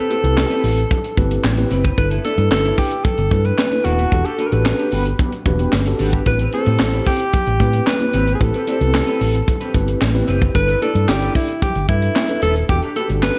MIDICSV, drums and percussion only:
0, 0, Header, 1, 2, 480
1, 0, Start_track
1, 0, Tempo, 535714
1, 1772, Time_signature, 4, 2, 24, 8
1, 11996, End_track
2, 0, Start_track
2, 0, Title_t, "Drums"
2, 96, Note_on_c, 9, 42, 69
2, 97, Note_on_c, 9, 62, 55
2, 185, Note_off_c, 9, 42, 0
2, 186, Note_off_c, 9, 62, 0
2, 219, Note_on_c, 9, 42, 55
2, 308, Note_off_c, 9, 42, 0
2, 336, Note_on_c, 9, 63, 92
2, 338, Note_on_c, 9, 38, 122
2, 339, Note_on_c, 9, 39, 93
2, 426, Note_off_c, 9, 63, 0
2, 428, Note_off_c, 9, 38, 0
2, 429, Note_off_c, 9, 39, 0
2, 459, Note_on_c, 9, 42, 58
2, 549, Note_off_c, 9, 42, 0
2, 574, Note_on_c, 9, 46, 80
2, 663, Note_off_c, 9, 46, 0
2, 696, Note_on_c, 9, 42, 56
2, 785, Note_off_c, 9, 42, 0
2, 813, Note_on_c, 9, 64, 75
2, 815, Note_on_c, 9, 36, 120
2, 817, Note_on_c, 9, 42, 93
2, 903, Note_off_c, 9, 64, 0
2, 905, Note_off_c, 9, 36, 0
2, 907, Note_off_c, 9, 42, 0
2, 936, Note_on_c, 9, 42, 65
2, 1025, Note_off_c, 9, 42, 0
2, 1053, Note_on_c, 9, 36, 105
2, 1055, Note_on_c, 9, 42, 75
2, 1055, Note_on_c, 9, 62, 56
2, 1142, Note_off_c, 9, 36, 0
2, 1144, Note_off_c, 9, 42, 0
2, 1145, Note_off_c, 9, 62, 0
2, 1175, Note_on_c, 9, 42, 70
2, 1264, Note_off_c, 9, 42, 0
2, 1294, Note_on_c, 9, 38, 127
2, 1294, Note_on_c, 9, 63, 86
2, 1295, Note_on_c, 9, 39, 103
2, 1384, Note_off_c, 9, 38, 0
2, 1384, Note_off_c, 9, 63, 0
2, 1385, Note_off_c, 9, 39, 0
2, 1411, Note_on_c, 9, 42, 62
2, 1414, Note_on_c, 9, 63, 77
2, 1500, Note_off_c, 9, 42, 0
2, 1503, Note_off_c, 9, 63, 0
2, 1530, Note_on_c, 9, 42, 75
2, 1619, Note_off_c, 9, 42, 0
2, 1653, Note_on_c, 9, 42, 53
2, 1654, Note_on_c, 9, 36, 103
2, 1743, Note_off_c, 9, 42, 0
2, 1744, Note_off_c, 9, 36, 0
2, 1773, Note_on_c, 9, 36, 105
2, 1774, Note_on_c, 9, 42, 83
2, 1862, Note_off_c, 9, 36, 0
2, 1863, Note_off_c, 9, 42, 0
2, 1893, Note_on_c, 9, 42, 63
2, 1982, Note_off_c, 9, 42, 0
2, 2013, Note_on_c, 9, 42, 73
2, 2013, Note_on_c, 9, 62, 59
2, 2103, Note_off_c, 9, 42, 0
2, 2103, Note_off_c, 9, 62, 0
2, 2132, Note_on_c, 9, 42, 53
2, 2222, Note_off_c, 9, 42, 0
2, 2254, Note_on_c, 9, 63, 90
2, 2255, Note_on_c, 9, 38, 111
2, 2256, Note_on_c, 9, 39, 94
2, 2344, Note_off_c, 9, 63, 0
2, 2345, Note_off_c, 9, 38, 0
2, 2346, Note_off_c, 9, 39, 0
2, 2376, Note_on_c, 9, 42, 57
2, 2465, Note_off_c, 9, 42, 0
2, 2488, Note_on_c, 9, 46, 82
2, 2491, Note_on_c, 9, 36, 89
2, 2577, Note_off_c, 9, 46, 0
2, 2580, Note_off_c, 9, 36, 0
2, 2609, Note_on_c, 9, 42, 60
2, 2699, Note_off_c, 9, 42, 0
2, 2730, Note_on_c, 9, 42, 99
2, 2731, Note_on_c, 9, 36, 117
2, 2733, Note_on_c, 9, 62, 34
2, 2733, Note_on_c, 9, 64, 75
2, 2820, Note_off_c, 9, 42, 0
2, 2821, Note_off_c, 9, 36, 0
2, 2823, Note_off_c, 9, 62, 0
2, 2823, Note_off_c, 9, 64, 0
2, 2848, Note_on_c, 9, 42, 61
2, 2937, Note_off_c, 9, 42, 0
2, 2969, Note_on_c, 9, 36, 113
2, 2970, Note_on_c, 9, 42, 81
2, 2973, Note_on_c, 9, 62, 55
2, 3058, Note_off_c, 9, 36, 0
2, 3060, Note_off_c, 9, 42, 0
2, 3062, Note_off_c, 9, 62, 0
2, 3088, Note_on_c, 9, 42, 64
2, 3178, Note_off_c, 9, 42, 0
2, 3209, Note_on_c, 9, 63, 84
2, 3212, Note_on_c, 9, 38, 125
2, 3213, Note_on_c, 9, 39, 97
2, 3298, Note_off_c, 9, 63, 0
2, 3302, Note_off_c, 9, 38, 0
2, 3303, Note_off_c, 9, 39, 0
2, 3330, Note_on_c, 9, 63, 81
2, 3331, Note_on_c, 9, 42, 63
2, 3419, Note_off_c, 9, 63, 0
2, 3421, Note_off_c, 9, 42, 0
2, 3447, Note_on_c, 9, 42, 80
2, 3537, Note_off_c, 9, 42, 0
2, 3574, Note_on_c, 9, 42, 51
2, 3664, Note_off_c, 9, 42, 0
2, 3692, Note_on_c, 9, 36, 92
2, 3693, Note_on_c, 9, 42, 81
2, 3781, Note_off_c, 9, 36, 0
2, 3782, Note_off_c, 9, 42, 0
2, 3811, Note_on_c, 9, 42, 57
2, 3901, Note_off_c, 9, 42, 0
2, 3931, Note_on_c, 9, 42, 74
2, 3931, Note_on_c, 9, 62, 52
2, 4021, Note_off_c, 9, 42, 0
2, 4021, Note_off_c, 9, 62, 0
2, 4051, Note_on_c, 9, 42, 58
2, 4141, Note_off_c, 9, 42, 0
2, 4173, Note_on_c, 9, 38, 116
2, 4174, Note_on_c, 9, 39, 90
2, 4174, Note_on_c, 9, 63, 93
2, 4263, Note_off_c, 9, 38, 0
2, 4264, Note_off_c, 9, 39, 0
2, 4264, Note_off_c, 9, 63, 0
2, 4296, Note_on_c, 9, 42, 56
2, 4385, Note_off_c, 9, 42, 0
2, 4408, Note_on_c, 9, 46, 85
2, 4498, Note_off_c, 9, 46, 0
2, 4528, Note_on_c, 9, 42, 54
2, 4618, Note_off_c, 9, 42, 0
2, 4652, Note_on_c, 9, 36, 118
2, 4652, Note_on_c, 9, 42, 94
2, 4655, Note_on_c, 9, 62, 38
2, 4655, Note_on_c, 9, 64, 75
2, 4742, Note_off_c, 9, 36, 0
2, 4742, Note_off_c, 9, 42, 0
2, 4745, Note_off_c, 9, 62, 0
2, 4745, Note_off_c, 9, 64, 0
2, 4770, Note_on_c, 9, 42, 61
2, 4859, Note_off_c, 9, 42, 0
2, 4889, Note_on_c, 9, 42, 79
2, 4890, Note_on_c, 9, 36, 112
2, 4897, Note_on_c, 9, 62, 52
2, 4897, Note_on_c, 9, 64, 69
2, 4979, Note_off_c, 9, 36, 0
2, 4979, Note_off_c, 9, 42, 0
2, 4987, Note_off_c, 9, 62, 0
2, 4987, Note_off_c, 9, 64, 0
2, 5010, Note_on_c, 9, 42, 68
2, 5100, Note_off_c, 9, 42, 0
2, 5131, Note_on_c, 9, 38, 127
2, 5132, Note_on_c, 9, 39, 89
2, 5132, Note_on_c, 9, 63, 85
2, 5221, Note_off_c, 9, 38, 0
2, 5222, Note_off_c, 9, 39, 0
2, 5222, Note_off_c, 9, 63, 0
2, 5250, Note_on_c, 9, 42, 67
2, 5254, Note_on_c, 9, 63, 75
2, 5340, Note_off_c, 9, 42, 0
2, 5343, Note_off_c, 9, 63, 0
2, 5367, Note_on_c, 9, 46, 74
2, 5456, Note_off_c, 9, 46, 0
2, 5490, Note_on_c, 9, 42, 52
2, 5493, Note_on_c, 9, 36, 102
2, 5580, Note_off_c, 9, 42, 0
2, 5582, Note_off_c, 9, 36, 0
2, 5609, Note_on_c, 9, 42, 77
2, 5611, Note_on_c, 9, 36, 107
2, 5699, Note_off_c, 9, 42, 0
2, 5701, Note_off_c, 9, 36, 0
2, 5728, Note_on_c, 9, 42, 55
2, 5817, Note_off_c, 9, 42, 0
2, 5847, Note_on_c, 9, 42, 69
2, 5855, Note_on_c, 9, 62, 60
2, 5937, Note_off_c, 9, 42, 0
2, 5945, Note_off_c, 9, 62, 0
2, 5970, Note_on_c, 9, 42, 58
2, 6060, Note_off_c, 9, 42, 0
2, 6088, Note_on_c, 9, 38, 118
2, 6090, Note_on_c, 9, 39, 88
2, 6094, Note_on_c, 9, 63, 90
2, 6178, Note_off_c, 9, 38, 0
2, 6179, Note_off_c, 9, 39, 0
2, 6184, Note_off_c, 9, 63, 0
2, 6209, Note_on_c, 9, 42, 52
2, 6299, Note_off_c, 9, 42, 0
2, 6325, Note_on_c, 9, 46, 81
2, 6331, Note_on_c, 9, 36, 95
2, 6415, Note_off_c, 9, 46, 0
2, 6420, Note_off_c, 9, 36, 0
2, 6450, Note_on_c, 9, 42, 59
2, 6540, Note_off_c, 9, 42, 0
2, 6571, Note_on_c, 9, 42, 96
2, 6573, Note_on_c, 9, 36, 117
2, 6576, Note_on_c, 9, 62, 38
2, 6576, Note_on_c, 9, 64, 82
2, 6661, Note_off_c, 9, 42, 0
2, 6663, Note_off_c, 9, 36, 0
2, 6665, Note_off_c, 9, 62, 0
2, 6665, Note_off_c, 9, 64, 0
2, 6688, Note_on_c, 9, 42, 59
2, 6778, Note_off_c, 9, 42, 0
2, 6810, Note_on_c, 9, 36, 106
2, 6810, Note_on_c, 9, 42, 82
2, 6817, Note_on_c, 9, 62, 51
2, 6899, Note_off_c, 9, 42, 0
2, 6900, Note_off_c, 9, 36, 0
2, 6906, Note_off_c, 9, 62, 0
2, 6929, Note_on_c, 9, 42, 66
2, 7019, Note_off_c, 9, 42, 0
2, 7052, Note_on_c, 9, 38, 126
2, 7052, Note_on_c, 9, 63, 77
2, 7053, Note_on_c, 9, 39, 101
2, 7141, Note_off_c, 9, 38, 0
2, 7141, Note_off_c, 9, 63, 0
2, 7143, Note_off_c, 9, 39, 0
2, 7168, Note_on_c, 9, 42, 63
2, 7172, Note_on_c, 9, 63, 80
2, 7258, Note_off_c, 9, 42, 0
2, 7262, Note_off_c, 9, 63, 0
2, 7288, Note_on_c, 9, 42, 81
2, 7378, Note_off_c, 9, 42, 0
2, 7414, Note_on_c, 9, 42, 51
2, 7503, Note_off_c, 9, 42, 0
2, 7533, Note_on_c, 9, 36, 99
2, 7533, Note_on_c, 9, 42, 80
2, 7623, Note_off_c, 9, 36, 0
2, 7623, Note_off_c, 9, 42, 0
2, 7653, Note_on_c, 9, 42, 60
2, 7743, Note_off_c, 9, 42, 0
2, 7773, Note_on_c, 9, 42, 77
2, 7774, Note_on_c, 9, 62, 59
2, 7862, Note_off_c, 9, 42, 0
2, 7863, Note_off_c, 9, 62, 0
2, 7895, Note_on_c, 9, 42, 56
2, 7985, Note_off_c, 9, 42, 0
2, 8014, Note_on_c, 9, 63, 95
2, 8016, Note_on_c, 9, 38, 120
2, 8017, Note_on_c, 9, 39, 97
2, 8103, Note_off_c, 9, 63, 0
2, 8105, Note_off_c, 9, 38, 0
2, 8107, Note_off_c, 9, 39, 0
2, 8139, Note_on_c, 9, 42, 57
2, 8228, Note_off_c, 9, 42, 0
2, 8253, Note_on_c, 9, 46, 82
2, 8342, Note_off_c, 9, 46, 0
2, 8375, Note_on_c, 9, 42, 60
2, 8464, Note_off_c, 9, 42, 0
2, 8493, Note_on_c, 9, 62, 35
2, 8493, Note_on_c, 9, 64, 70
2, 8494, Note_on_c, 9, 36, 115
2, 8495, Note_on_c, 9, 42, 97
2, 8582, Note_off_c, 9, 62, 0
2, 8582, Note_off_c, 9, 64, 0
2, 8583, Note_off_c, 9, 36, 0
2, 8584, Note_off_c, 9, 42, 0
2, 8611, Note_on_c, 9, 42, 63
2, 8700, Note_off_c, 9, 42, 0
2, 8731, Note_on_c, 9, 36, 110
2, 8734, Note_on_c, 9, 42, 77
2, 8734, Note_on_c, 9, 62, 51
2, 8821, Note_off_c, 9, 36, 0
2, 8824, Note_off_c, 9, 42, 0
2, 8824, Note_off_c, 9, 62, 0
2, 8853, Note_on_c, 9, 42, 65
2, 8943, Note_off_c, 9, 42, 0
2, 8973, Note_on_c, 9, 63, 80
2, 8974, Note_on_c, 9, 38, 121
2, 8975, Note_on_c, 9, 39, 99
2, 9063, Note_off_c, 9, 38, 0
2, 9063, Note_off_c, 9, 63, 0
2, 9065, Note_off_c, 9, 39, 0
2, 9091, Note_on_c, 9, 42, 62
2, 9092, Note_on_c, 9, 63, 76
2, 9180, Note_off_c, 9, 42, 0
2, 9182, Note_off_c, 9, 63, 0
2, 9210, Note_on_c, 9, 42, 79
2, 9299, Note_off_c, 9, 42, 0
2, 9334, Note_on_c, 9, 36, 105
2, 9335, Note_on_c, 9, 42, 48
2, 9423, Note_off_c, 9, 36, 0
2, 9424, Note_off_c, 9, 42, 0
2, 9452, Note_on_c, 9, 36, 99
2, 9454, Note_on_c, 9, 42, 80
2, 9542, Note_off_c, 9, 36, 0
2, 9543, Note_off_c, 9, 42, 0
2, 9572, Note_on_c, 9, 42, 60
2, 9662, Note_off_c, 9, 42, 0
2, 9694, Note_on_c, 9, 42, 71
2, 9694, Note_on_c, 9, 62, 59
2, 9783, Note_off_c, 9, 62, 0
2, 9784, Note_off_c, 9, 42, 0
2, 9814, Note_on_c, 9, 42, 59
2, 9904, Note_off_c, 9, 42, 0
2, 9935, Note_on_c, 9, 38, 113
2, 9936, Note_on_c, 9, 39, 95
2, 9936, Note_on_c, 9, 63, 97
2, 10025, Note_off_c, 9, 38, 0
2, 10026, Note_off_c, 9, 39, 0
2, 10026, Note_off_c, 9, 63, 0
2, 10056, Note_on_c, 9, 42, 57
2, 10146, Note_off_c, 9, 42, 0
2, 10170, Note_on_c, 9, 46, 85
2, 10172, Note_on_c, 9, 36, 98
2, 10259, Note_off_c, 9, 46, 0
2, 10261, Note_off_c, 9, 36, 0
2, 10292, Note_on_c, 9, 42, 62
2, 10381, Note_off_c, 9, 42, 0
2, 10413, Note_on_c, 9, 62, 35
2, 10413, Note_on_c, 9, 64, 76
2, 10414, Note_on_c, 9, 36, 119
2, 10415, Note_on_c, 9, 42, 92
2, 10503, Note_off_c, 9, 36, 0
2, 10503, Note_off_c, 9, 62, 0
2, 10503, Note_off_c, 9, 64, 0
2, 10504, Note_off_c, 9, 42, 0
2, 10531, Note_on_c, 9, 42, 61
2, 10621, Note_off_c, 9, 42, 0
2, 10651, Note_on_c, 9, 36, 106
2, 10653, Note_on_c, 9, 42, 78
2, 10653, Note_on_c, 9, 62, 54
2, 10741, Note_off_c, 9, 36, 0
2, 10743, Note_off_c, 9, 42, 0
2, 10743, Note_off_c, 9, 62, 0
2, 10773, Note_on_c, 9, 42, 65
2, 10863, Note_off_c, 9, 42, 0
2, 10892, Note_on_c, 9, 63, 89
2, 10895, Note_on_c, 9, 38, 124
2, 10896, Note_on_c, 9, 39, 104
2, 10982, Note_off_c, 9, 63, 0
2, 10985, Note_off_c, 9, 38, 0
2, 10986, Note_off_c, 9, 39, 0
2, 11011, Note_on_c, 9, 42, 63
2, 11014, Note_on_c, 9, 63, 75
2, 11101, Note_off_c, 9, 42, 0
2, 11104, Note_off_c, 9, 63, 0
2, 11128, Note_on_c, 9, 42, 72
2, 11217, Note_off_c, 9, 42, 0
2, 11254, Note_on_c, 9, 42, 49
2, 11344, Note_off_c, 9, 42, 0
2, 11372, Note_on_c, 9, 36, 107
2, 11372, Note_on_c, 9, 42, 80
2, 11462, Note_off_c, 9, 36, 0
2, 11462, Note_off_c, 9, 42, 0
2, 11491, Note_on_c, 9, 42, 55
2, 11581, Note_off_c, 9, 42, 0
2, 11613, Note_on_c, 9, 42, 72
2, 11613, Note_on_c, 9, 62, 53
2, 11702, Note_off_c, 9, 42, 0
2, 11703, Note_off_c, 9, 62, 0
2, 11734, Note_on_c, 9, 42, 52
2, 11823, Note_off_c, 9, 42, 0
2, 11853, Note_on_c, 9, 38, 117
2, 11855, Note_on_c, 9, 39, 90
2, 11855, Note_on_c, 9, 63, 85
2, 11943, Note_off_c, 9, 38, 0
2, 11944, Note_off_c, 9, 39, 0
2, 11945, Note_off_c, 9, 63, 0
2, 11996, End_track
0, 0, End_of_file